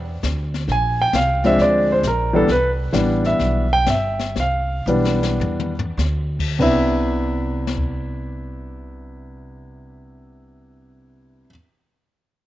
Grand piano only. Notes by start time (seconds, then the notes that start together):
0.72 G#5
1.01 G5
1.15 F5
1.44 F3 G#3 C4 D4 E5
1.62 D5
1.92 C5
2.07 A#4
2.33 E3 G3 B3 D4 A4
2.51 B4
2.93 E3 G3 B3 D4
3.26 E5
3.73 G5
3.90 E5
4.40 F5
4.88 E3 G3 B3 D4
6.59 C3 B3 D4 E4 E5